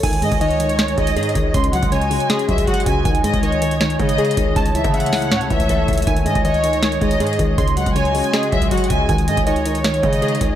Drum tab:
CC |x-----------------------------------------------------------------------------------------------|------------------------------------------------------------------------------------------------|------------------------------------------------------------------------------------------------|------------------------------------------------------------------------------------------------|
HH |x-----x-----x-----x-----x-----x-----x-----x-----x-----x-----x-----x-----x---x---x---x-----------|x-----x-----x-----x-----x-----x-----o-----x-----x-----x-----x-----x-----x---x---x---x-----------|x-----x-----x-----x-----x-----x-----x-----x-----x-----x-----x-----x-----x---x---x---x-----------|x-----x-----x-----x-----x---x---x---o-----x-----x-----x-----x-----x-----x-----------x--x--x--x--|
SD |------------------------------------------------o-----------------------------------------------|------------------------------------------------o-----------------------------------------------|------------------------------------------------o-----------------------------------------------|------------------------------------o-----------o-----------------------------------------------|
BD |o-----------------o-----------------------------------------o-----------------------o-----------|o-----------------o-----------------------------------------o-----o-----o-----------o-----------|o-----------------o-----------------------------------------o-----------------------o-----------|o-----------------o-----------------------------------------o-----o-----o-----------o-----------|

CC |------------------------------------------------------------------------------------------------|------------------------------------------------------------------------------------------------|------------------------------------------------------------------------------------------------|
HH |x-----x-----x-----x-----x-----x-----x-----x-----x-----x-----x-----x-----x---x---x---x-----------|x-----x-----x-----x-----x-----x-----o-----x-----x-----x-----x-----x-----x---x---x---x-----------|x-----x-----x-----x-----x-----x-----x-----x-----x-----x-----x-----x-----x---x---x---x-----------|
SD |------------------------------------------------o-----------------------------------------------|------------------------------------------------o-----------------------------------------------|------------------------------------------------o-----------------------------------------------|
BD |o-----------------o-----------------------------------------o-----------------------o-----------|o-----------------o-----------------------------------------o-----o-----o-----------o-----------|o-----------------o-----------------------------------------o-----------------------o-----------|